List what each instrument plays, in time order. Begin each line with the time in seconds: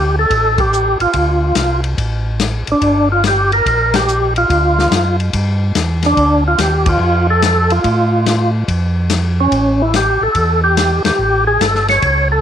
Already playing: tonewheel organ D2 G4
0.19 tonewheel organ A4
0.30 tonewheel organ A1, kick, ride
0.58 tonewheel organ G4, kick, ride
0.73 hi-hat pedal
1.00 tonewheel organ A1 F4, ride
1.13 tonewheel organ D2, kick, ride
1.55 tonewheel organ C2, snare, hi-hat pedal, ride
1.84 ride
1.97 tonewheel organ A1, kick, ride
2.40 snare, hi-hat pedal, ride
2.67 tonewheel organ A1, ride
2.72 tonewheel organ D4
2.82 tonewheel organ G1, kick, ride
3.12 tonewheel organ F4
3.24 tonewheel organ G4, snare, hi-hat pedal, ride
3.52 tonewheel organ A#4, ride
3.66 tonewheel organ A#1, kick, ride
3.94 tonewheel organ G4, snare, ride
4.08 hi-hat pedal
4.36 tonewheel organ F4, ride
4.49 tonewheel organ D2, kick, ride
4.79 snare
4.91 tonewheel organ F#2, snare, hi-hat pedal, ride
5.20 ride
5.33 tonewheel organ G2, kick, ride
5.75 tonewheel organ E2, snare, hi-hat pedal, ride
6.03 tonewheel organ D4, snare, ride
6.17 tonewheel organ D2, kick, ride
6.48 tonewheel organ F4
6.58 tonewheel organ D#2 G4, snare, hi-hat pedal, ride
6.86 tonewheel organ F4, kick, ride
6.99 tonewheel organ F2
7.30 tonewheel organ A4
7.42 snare, hi-hat pedal, ride
7.70 tonewheel organ F4, ride
7.84 tonewheel organ A2, kick, ride
8.26 snare, hi-hat pedal, ride
8.68 tonewheel organ F2, kick, ride
9.10 snare, hi-hat pedal, ride
9.40 tonewheel organ C#4
9.52 tonewheel organ A1, kick, ride
9.82 tonewheel organ E4
9.94 tonewheel organ G4, snare, hi-hat pedal, ride
10.21 tonewheel organ A1 A4
10.35 tonewheel organ E2, kick, ride
10.64 tonewheel organ G4
10.77 snare, hi-hat pedal, ride
11.04 tonewheel organ E2 G4, snare, ride
11.19 tonewheel organ A1
11.47 tonewheel organ G#4
11.60 tonewheel organ G1 A4, snare, hi-hat pedal, ride
11.75 snare
11.88 tonewheel organ C#5, snare, ride
12.02 tonewheel organ C#2, kick, ride
12.32 tonewheel organ A4